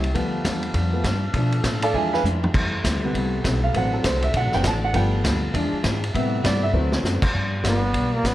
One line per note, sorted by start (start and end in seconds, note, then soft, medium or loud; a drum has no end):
0.00 0.14 C2 medium
0.00 0.13 C#4 medium
0.00 1.31 G4 medium
0.00 0.13 A#4 medium
0.00 0.12 E5 loud
0.00 ride medium
0.14 0.44 D2 medium
0.14 0.34 G2 medium
0.14 0.91 F3 medium
0.14 0.34 F3 soft
0.14 0.92 A3 medium
0.14 0.92 B3 medium
0.14 0.35 B3 medium
0.14 2.52 D4 medium
0.14 0.35 D4 medium
0.14 1.93 B4 medium
0.14 1.93 F5 medium
0.14 kick soft
0.14 ride medium
0.45 0.73 E2 medium
0.45 0.64 G2 medium
0.45 0.64 F3 medium
0.45 0.64 B3 medium
0.45 0.65 D4 medium
0.45 kick soft
0.45 snare medium
0.45 hi-hat pedal medium
0.45 ride medium
0.63 ride medium
0.73 1.03 F2 medium
0.73 0.93 G2 medium
0.73 0.94 F3 medium
0.73 0.94 B3 medium
0.73 0.94 D4 medium
0.73 kick soft
0.73 ride medium
0.93 1.03 F3 soft
0.93 1.04 A3 soft
0.93 1.04 B3 medium
1.03 1.23 G2 medium
1.03 1.33 G2 loud
1.03 1.24 F3 medium
1.03 1.24 B3 medium
1.03 1.24 D4 medium
1.03 kick soft
1.03 snare medium
1.03 hi-hat pedal medium
1.03 ride medium
1.33 1.63 B2 medium
1.33 1.53 B2 medium
1.33 1.54 F3 medium
1.33 1.57 F3 medium
1.33 1.54 A3 medium
1.33 1.57 A3 soft
1.33 1.54 D4 medium
1.33 1.57 D4 medium
1.33 1.93 A4 medium
1.33 kick soft
1.33 ride medium
1.52 ride medium
1.63 1.93 A2 medium
1.63 1.83 B2 medium
1.63 1.83 F3 medium
1.63 1.84 A3 medium
1.63 1.84 D4 medium
1.63 kick soft
1.63 snare medium
1.63 hi-hat pedal medium
1.63 ride medium
1.82 1.95 A4 medium
1.82 1.94 D5 medium
1.82 1.94 F5 medium
1.82 1.94 A5 loud
1.82 ride medium
1.93 2.23 E2 medium
1.93 2.14 E3 medium
1.93 2.16 F3 medium
1.93 2.16 G#3 soft
1.93 2.14 G#3 medium
1.93 2.16 D4 medium
1.93 2.15 D4 medium
1.93 2.54 F4 medium
1.93 2.14 F4 medium
1.93 2.54 G#4 medium
1.93 2.13 G#4 medium
1.93 3.73 E5 medium
1.93 2.13 E5 medium
1.93 2.12 F5 medium
1.93 2.12 G#5 medium
1.93 kick soft
2.13 2.21 B4 medium
2.13 2.20 F5 medium
2.13 2.21 G#5 medium
2.13 2.20 B5 medium
2.13 snare soft
2.23 2.53 F2 medium
2.23 2.44 E3 medium
2.23 2.44 G#3 medium
2.23 2.44 D4 medium
2.23 2.44 F4 medium
2.23 hi-hat pedal soft
2.23 high tom medium
2.44 floor tom medium
2.54 2.83 E2 medium
2.54 2.74 A2 medium
2.54 4.92 C3 medium
2.54 2.74 G3 medium
2.54 2.75 C4 medium
2.54 2.75 E4 medium
2.54 3.73 G4 medium
2.54 4.92 A4 medium
2.54 kick medium
2.54 crash medium
2.83 3.13 D2 medium
2.83 3.03 A2 medium
2.83 3.03 G3 medium
2.83 3.04 C4 medium
2.83 3.04 E4 medium
2.83 kick soft
2.83 snare medium
2.83 hi-hat pedal medium
2.83 ride medium
3.03 3.71 C3 medium
3.03 3.71 G3 soft
3.03 3.71 B3 medium
3.13 3.43 C2 medium
3.13 3.33 A2 medium
3.13 3.34 G3 medium
3.13 3.34 C4 medium
3.13 3.34 E4 medium
3.13 kick soft
3.13 ride medium
3.44 3.73 B1 loud
3.44 3.63 A2 medium
3.44 3.64 G3 medium
3.44 3.64 C4 medium
3.44 3.64 E4 medium
3.44 kick soft
3.44 snare medium
3.44 hi-hat pedal medium
3.44 ride medium
3.64 3.75 F5 medium
3.73 4.03 A1 medium
3.73 3.93 D3 soft
3.73 4.20 E3 medium
3.73 4.21 F#3 soft
3.73 3.94 A3 soft
3.73 3.94 C4 medium
3.73 4.21 C4 medium
3.73 4.93 F#4 medium
3.73 3.95 F#4 soft
3.73 5.37 D5 medium
3.73 3.93 F#5 medium
3.73 kick soft
3.73 ride medium
3.93 4.04 A4 medium
4.04 4.33 C2 loud
4.04 4.24 D3 medium
4.04 4.24 A3 medium
4.04 4.24 C4 medium
4.04 4.25 F#4 medium
4.04 4.23 C5 medium
4.04 kick soft
4.04 snare medium
4.04 hi-hat pedal medium
4.04 ride medium
4.22 4.34 E5 medium
4.22 ride medium
4.34 4.44 B1 medium
4.34 4.54 D3 medium
4.34 4.54 A3 soft
4.34 4.54 C4 medium
4.34 4.55 F#4 medium
4.34 4.53 F#5 medium
4.34 kick soft
4.34 ride medium
4.44 4.53 A1 medium
4.52 4.63 F#1 medium
4.52 4.64 E3 soft
4.52 4.64 F#3 soft
4.52 4.64 C4 medium
4.52 4.65 G5 medium
4.52 snare soft
4.64 4.93 A1 loud
4.64 4.84 D3 medium
4.64 4.84 A3 medium
4.64 4.84 C4 medium
4.64 4.85 F#4 medium
4.64 4.83 A5 loud
4.64 kick soft
4.64 snare medium
4.64 hi-hat pedal medium
4.64 ride medium
4.84 4.95 F#5 medium
4.93 5.23 G1 medium
4.93 5.51 F3 medium
4.93 5.13 G3 medium
4.93 5.51 A3 soft
4.93 5.37 B3 medium
4.93 5.51 B3 medium
4.93 5.13 D4 soft
4.93 6.12 F4 medium
4.93 5.14 F4 medium
4.93 5.37 G4 medium
4.93 5.14 B4 medium
4.93 5.23 G5 medium
4.93 kick soft
4.93 ride medium
5.24 5.53 D2 medium
5.24 5.44 G3 medium
5.24 5.44 D4 medium
5.24 5.44 F4 medium
5.24 5.45 B4 medium
5.24 kick soft
5.24 snare medium
5.24 hi-hat pedal medium
5.24 ride medium
5.54 5.71 E2 loud
5.54 5.74 E3 medium
5.54 5.75 F3 soft
5.54 5.76 G#3 soft
5.54 5.74 G#3 medium
5.54 6.13 D4 medium
5.54 5.76 D4 medium
5.54 5.74 D4 medium
5.54 5.75 F4 medium
5.54 6.13 G#4 medium
5.54 6.14 E5 medium
5.54 kick soft
5.54 ride medium
5.73 muted upright bass stroke soft
5.83 6.13 G#2 loud
5.83 6.03 E3 medium
5.83 6.03 G#3 medium
5.83 6.04 D4 medium
5.83 6.04 F4 medium
5.83 kick soft
5.83 snare medium
5.83 hi-hat pedal medium
5.83 ride medium
6.04 ride medium
6.14 6.33 A2 medium
6.14 6.43 A2 medium
6.14 6.71 C3 medium
6.14 6.71 G3 soft
6.14 6.34 G3 medium
6.14 6.71 B3 medium
6.14 6.34 C4 medium
6.14 6.35 E4 medium
6.14 6.73 G4 medium
6.14 7.33 A4 medium
6.14 6.73 E5 medium
6.14 kick soft
6.14 ride medium
6.44 6.72 G2 medium
6.44 6.63 A2 medium
6.44 6.63 G3 medium
6.44 6.63 C4 medium
6.44 6.64 E4 medium
6.44 6.62 D5 medium
6.44 kick soft
6.44 snare medium
6.44 hi-hat pedal medium
6.44 ride medium
6.63 6.70 E5 medium
6.73 7.02 D2 medium
6.73 6.93 D3 soft
6.73 7.30 E3 medium
6.73 7.31 F#3 soft
6.73 6.93 A3 medium
6.73 7.31 C4 medium
6.73 6.94 C4 soft
6.73 7.33 F#4 medium
6.73 6.94 F#4 medium
6.73 7.33 D5 medium
6.92 snare medium
7.03 7.20 F#2 loud
7.03 7.23 D3 medium
7.03 7.23 A3 medium
7.03 7.24 C4 medium
7.03 7.24 F#4 medium
7.03 snare medium
7.03 hi-hat pedal medium
7.22 kick medium
7.22 crash loud
7.32 7.52 G2 soft
7.32 7.63 G2 medium
7.32 7.53 F3 medium
7.32 8.35 B3 medium
7.32 7.53 B3 medium
7.32 7.53 D4 medium
7.32 8.35 F4 medium
7.32 8.35 G4 medium
7.32 8.35 D5 medium
7.32 kick soft
7.63 7.92 G1 medium
7.63 7.83 G2 medium
7.63 7.83 F3 medium
7.63 7.79 G3 medium
7.63 7.79 A3 medium
7.63 7.80 B3 medium
7.63 7.83 B3 medium
7.63 7.80 D4 medium
7.63 7.84 D4 medium
7.63 7.80 F4 medium
7.63 kick soft
7.63 snare medium
7.63 hi-hat pedal medium
7.63 ride medium
7.67 8.16 B3 medium
7.92 8.22 B1 medium
7.92 8.12 G2 soft
7.92 8.13 F3 medium
7.92 8.13 B3 medium
7.92 8.13 D4 medium
7.92 kick soft
7.92 ride medium
8.14 8.28 A#3 medium
8.23 8.35 A1 medium
8.23 8.35 G2 medium
8.23 8.35 F3 medium
8.23 8.35 B3 medium
8.23 8.35 D4 medium
8.23 kick soft
8.23 snare medium
8.23 hi-hat pedal soft
8.23 ride medium